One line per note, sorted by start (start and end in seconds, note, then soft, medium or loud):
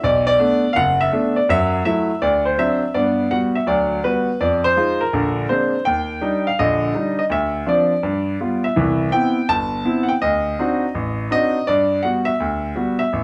0.04 0.34 B1 medium
0.04 0.25 D5 medium
0.27 0.69 D5 loud
0.39 0.63 A3 soft
0.39 0.63 B3 soft
0.39 0.64 D4 medium
0.73 1.07 F#1 medium
0.73 0.75 F5 medium
0.73 1.00 F#5 loud
1.01 1.37 E5 medium
1.12 1.36 A3 soft
1.12 1.36 B3 soft
1.12 1.37 D4 soft
1.36 1.49 D5 medium
1.49 1.80 F#2 medium
1.49 1.80 F#3 medium
1.49 1.84 E5 loud
1.85 2.09 F#3 medium
1.85 2.09 A3 soft
1.85 2.10 E4 medium
1.85 2.22 E5 medium
2.22 2.53 D2 medium
2.22 2.43 D5 medium
2.45 2.79 C5 medium
2.58 2.82 F#3 soft
2.58 2.82 C4 soft
2.58 2.82 D4 medium
2.58 2.95 E5 medium
2.94 3.26 G2 medium
2.94 3.26 B3 medium
2.94 3.31 D5 medium
3.31 3.55 G3 soft
3.31 3.55 B3 soft
3.31 3.56 F#4 soft
3.31 3.36 F#5 medium
3.55 3.66 E5 medium
3.67 3.98 D2 medium
3.67 3.98 F#3 medium
3.67 4.04 D5 medium
4.04 4.28 G3 soft
4.04 4.28 B3 soft
4.04 4.28 F#4 soft
4.04 4.41 B4 medium
4.41 4.71 F2 medium
4.41 4.62 D5 medium
4.64 5.01 C5 medium
4.76 5.01 G#3 soft
4.76 5.01 D#4 soft
4.76 5.01 F4 soft
5.01 5.51 A#4 medium
5.13 5.44 A#1 medium
5.13 5.44 D3 medium
5.49 5.74 G#3 soft
5.49 5.74 A#3 soft
5.49 5.74 C4 soft
5.49 5.74 D4 soft
5.49 5.83 C5 medium
5.85 6.17 D#2 medium
5.85 6.47 G5 medium
6.21 6.46 G3 soft
6.21 6.46 D4 soft
6.21 6.46 D#4 medium
6.47 6.59 F5 medium
6.59 6.90 A#1 medium
6.59 6.90 D3 medium
6.59 7.14 D#5 medium
6.94 7.19 G3 soft
6.94 7.19 D4 soft
6.94 7.19 D#4 soft
7.19 7.24 D#5 medium
7.30 7.62 D2 medium
7.30 7.69 E5 medium
7.66 7.91 F3 soft
7.66 7.91 C4 soft
7.66 7.92 D4 medium
7.66 8.60 D5 medium
8.03 8.35 G2 medium
8.41 8.65 G3 soft
8.41 8.65 B3 soft
8.41 8.65 F4 soft
8.64 9.15 E5 medium
8.76 9.08 C2 medium
8.76 9.08 E3 medium
9.12 9.38 B3 soft
9.12 9.38 C4 soft
9.12 9.38 E4 soft
9.12 9.50 G5 medium
9.49 9.81 G1 medium
9.49 10.05 A5 loud
9.85 10.10 B3 soft
9.85 10.10 C4 soft
9.85 10.10 E4 medium
10.03 10.09 F#5 medium
10.09 10.14 G5 medium
10.22 10.54 D2 medium
10.22 11.30 D#5 medium
10.59 10.84 C4 medium
10.59 10.84 D4 soft
10.59 10.84 D#4 soft
10.59 10.84 F#4 medium
10.95 11.26 A1 medium
11.31 11.56 C4 soft
11.31 11.56 D4 soft
11.31 11.56 D#4 soft
11.31 11.56 F#4 medium
11.31 11.69 D#5 medium
11.67 12.00 G2 medium
11.67 12.01 D5 medium
12.03 12.29 G3 soft
12.03 12.29 B3 soft
12.03 12.29 F#4 medium
12.03 12.08 F#5 medium
12.25 12.97 E5 medium
12.40 12.72 D2 medium
12.76 13.01 G3 soft
12.76 13.01 B3 soft
12.76 13.01 F#4 medium
12.99 13.24 E5 medium
13.13 13.24 A1 medium